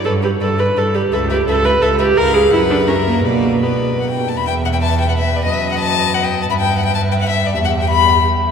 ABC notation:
X:1
M:3/4
L:1/16
Q:1/4=170
K:Bm
V:1 name="Violin"
d2 d2 d2 d2 d2 d2 | e2 e2 e2 e2 e2 e2 | ^e4 f4 =e4 | d4 d4 f g2 a |
[K:Em] b g2 f g a2 g f e2 d | ^d e2 f a4 f g2 a | b g2 f g a2 g f e2 d | e f2 g b4 z4 |]
V:2 name="Violin"
B2 B2 B2 B2 B2 B2 | B2 B2 B2 B2 B2 B2 | B4 B4 ^A4 | B4 B6 z2 |
[K:Em] e12 | ^d12 | e12- | e12 |]
V:3 name="Viola"
A2 G2 A2 B2 A2 G2 | A2 G2 A2 B2 A2 G2 | ^A2 ^G2 E2 D2 C2 ^A,2 | ^A,4 B,4 z4 |
[K:Em] B12- | B12 | B12 | G12 |]
V:4 name="Cello" clef=bass
G,,4 G,,4 G,,4 | C,,4 C,,4 C,,4 | C,,4 F,,8 | B,,8- B,,2 z2 |
[K:Em] E,,12 | F,,12 | G,,12 | E,,12 |]